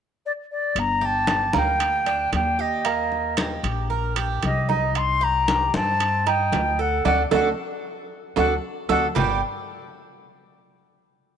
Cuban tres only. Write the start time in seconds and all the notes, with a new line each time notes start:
1.01 G4
1.54 A#3
2.06 D4
2.59 G4
2.85 A#3
3.38 G4
3.90 A#4
4.16 G4
4.69 D#4
5.21 G4
5.74 C4
6.26 D#4
6.79 A4
7.05 D4 F#4 A4
7.31 D4 F#4 A4
8.37 D4 F#4 A4
8.89 D4 F#4 A4
9.15 G3 D4 G4